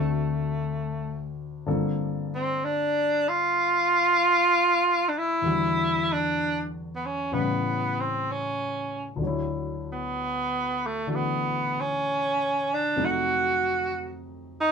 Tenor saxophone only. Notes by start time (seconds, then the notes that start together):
Already playing: A3
2.35 C4
2.65 D4
3.28 F4
5.09 D4
5.18 E4
6.13 D4
6.96 B3
7.06 C#4
7.34 B3
8.00 C4
8.32 C#4
9.92 B3
10.86 A3
11.10 A3
11.15 B3
11.81 C#4
12.74 D4
13.05 F#4
14.61 D#4